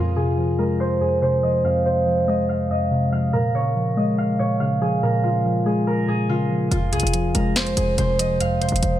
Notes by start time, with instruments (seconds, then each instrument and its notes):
Already playing: synth keys F2, harp F4 G#4 A#4
0.16 synth keys C3, harp G#4
0.38 synth keys F3
0.59 synth keys G#3, harp A#4
0.80 harp C5
1.01 synth keys F2, harp G#4
1.22 synth keys C3, harp C5
1.43 synth keys F3, harp D#5
1.64 synth keys F2, harp F5
1.85 synth keys C3, harp C5
2.07 synth keys F3
2.28 synth keys G#3, harp D#5
2.49 harp F5
2.70 synth keys F2, harp D#5
2.91 synth keys C3
3.12 synth keys F3, harp F5
3.33 synth keys A#2, harp A#4
3.55 synth keys C#3, harp C#5
3.76 synth keys F3
3.97 synth keys G#3, harp D#5
4.18 harp F5
4.39 synth keys A#2, harp C#5
4.60 synth keys C#3, harp F5
4.81 synth keys F3, harp G#4
5.03 synth keys A#2, harp A#4
5.23 synth keys C#3, harp F4
5.45 synth keys F3
5.66 synth keys G#3, harp G#4
5.87 harp A#4
6.08 synth keys A#2, harp G#4
6.29 synth keys C#3, harp F4
6.50 synth keys F3
6.71 808-style bass F1, synth keys F2, harp F4, closed hi-hat
6.92 808-style bass C2, synth keys C3, harp G#4, closed hi-hat
7.00 808-style bass F1, closed hi-hat
7.07 closed hi-hat
7.14 synth keys F3, closed hi-hat
7.35 808-style bass F1, synth keys G#3, harp A#4, closed hi-hat
7.56 harp C5, finger snap, snare, closed hi-hat
7.67 closed hi-hat
7.77 808-style bass F1, synth keys F2, harp G#4, closed hi-hat
7.98 808-style bass F1, synth keys C3, harp C5, closed hi-hat
8.19 synth keys F3, harp D#5, closed hi-hat
8.40 synth keys F2, harp F5, closed hi-hat
8.61 synth keys C3, harp C5, closed hi-hat, open hi-hat
8.69 808-style bass F1, closed hi-hat
8.76 closed hi-hat
8.83 808-style bass F1, synth keys F3, closed hi-hat